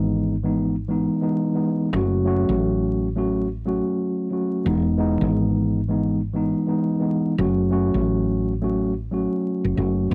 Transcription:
Already playing: fretless electric bass G#1, tine electric piano E3 G#3 B3 D#4
0.43 tine electric piano E3 G#3 B3 D#4
0.88 tine electric piano E3 G#3 B3 D#4
1.21 tine electric piano E3 G#3 B3 D#4
1.54 tine electric piano E3 G#3 B3 D#4
1.93 fretless electric bass F#1, tine electric piano F#3 A3 C#4 F#4
2.25 tine electric piano F#3 A3 C#4 F#4
2.49 fretless electric bass A1
3.16 tine electric piano F#3 A3 C#4 F#4
3.65 tine electric piano F#3 A3 C#4 F#4
4.31 tine electric piano F#3 A3 C#4 F#4
4.65 fretless electric bass E1, tine electric piano E3 G#3 B3 D#4
4.97 tine electric piano E3 G#3 B3 D#4
5.21 fretless electric bass G#1
5.89 tine electric piano E3 G#3 B3 D#4
6.34 tine electric piano E3 G#3 B3 D#4
6.67 tine electric piano E3 G#3 B3 D#4
7.00 tine electric piano E3 G#3 B3 D#4
7.38 fretless electric bass F#1, tine electric piano F#3 A3 C#4 F#4
7.70 tine electric piano F#3 A3 C#4 F#4
7.94 fretless electric bass A1
8.61 tine electric piano F#3 A3 C#4 F#4
9.11 tine electric piano F#3 A3 C#4 F#4
9.64 fretless electric bass F#1
9.76 fretless electric bass F#1, tine electric piano F#3 A3 C#4 F#4
10.10 fretless electric bass E1, tine electric piano E3 G#3 B3

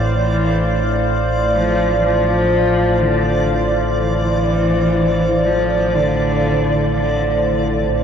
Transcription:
Already playing: synth drone A1 A2, ambient pad A2 C5 D5 F5, synth texture D5
0.09 cello E3
1.55 cello F3
2.03 cello F3
3.01 cello D3
3.98 cello E3
5.46 cello F3
5.95 cello D3
6.93 cello D3
7.88 synth drone A1 A2, ambient pad A3, synth texture A4

